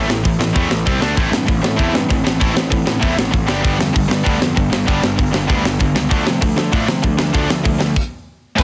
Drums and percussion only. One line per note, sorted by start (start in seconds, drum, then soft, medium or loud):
0.10 snare loud
0.25 kick loud
0.25 open hi-hat medium
0.41 snare loud
0.56 kick loud
0.56 open hi-hat medium
0.71 snare loud
0.87 kick loud
0.87 open hi-hat medium
1.02 snare loud
1.17 kick loud
1.17 open hi-hat medium
1.33 snare loud
1.48 kick loud
1.48 open hi-hat medium
1.64 snare loud
1.79 kick loud
1.79 open hi-hat medium
1.95 snare loud
2.10 kick medium
2.10 open hi-hat medium
2.27 snare loud
2.41 kick loud
2.41 open hi-hat medium
2.57 snare loud
2.72 kick loud
2.72 open hi-hat medium
2.87 snare loud
3.02 kick loud
3.02 open hi-hat medium
3.19 snare loud
3.33 kick medium
3.33 open hi-hat soft
3.48 snare loud
3.65 kick loud
3.65 open hi-hat medium
3.81 snare loud
3.96 kick loud
3.96 open hi-hat medium
4.11 snare loud
4.26 kick loud
4.26 open hi-hat medium
4.42 snare loud
4.57 kick medium
4.57 open hi-hat soft
4.73 snare loud
4.88 kick loud
4.88 open hi-hat medium
5.04 snare loud
5.19 kick loud
5.19 open hi-hat medium
5.34 snare loud
5.50 kick loud
5.50 open hi-hat soft
5.65 snare loud
5.80 kick medium
5.80 open hi-hat soft
5.96 snare loud
6.11 kick loud
6.11 open hi-hat medium
6.27 snare loud
6.42 kick loud
6.42 open hi-hat medium
6.58 snare loud
6.72 kick loud
6.72 open hi-hat medium
6.88 snare loud
7.03 kick loud
7.03 open hi-hat soft
7.19 snare loud
7.34 kick loud
7.34 open hi-hat medium
7.50 snare loud
7.65 kick loud
7.65 open hi-hat medium
7.80 snare loud
7.96 kick medium
7.96 crash medium
8.58 kick loud
8.58 crash loud